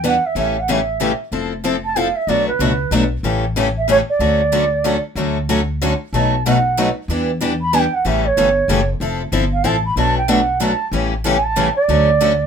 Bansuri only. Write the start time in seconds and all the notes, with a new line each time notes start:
0.06 F#5
0.26 E5
0.38 E5
0.60 F#5
0.71 E5
1.84 A5
1.97 F5
2.15 E5
2.28 D5
2.48 B4
3.77 E5
3.90 C#5
4.09 D5
6.14 A5
6.46 F#5
7.61 B5
7.74 G#5
7.79 G5
7.94 F#5
8.07 E5
8.26 C#5
9.53 F5
9.65 A5
9.85 B5
9.98 A5
10.18 G5
10.30 F#5
10.63 A5
11.36 G#5
11.43 A5
11.76 D5